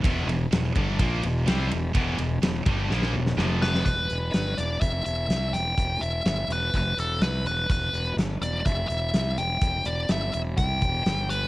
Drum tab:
RD |x-x-x-x-x-x-x-x-|x-x-x-x---------|----------------|----------------|
HH |----------------|----------------|x-x-x-x-x-x-x-x-|x-x-x-x-x-x-x-x-|
SD |----o-------o---|----o---oo-oo-oo|----o-------o-o-|----o-------o---|
BD |o-----o-o-------|o-----o---------|o-------o-------|o-------o-------|

RD |----------------|----------------|
HH |x-x-x-x-x-x-x-x-|x-x-x-x-x-x-x-x-|
SD |----o-------o---|----o-------o---|
BD |o-------o-------|o-------o-o-----|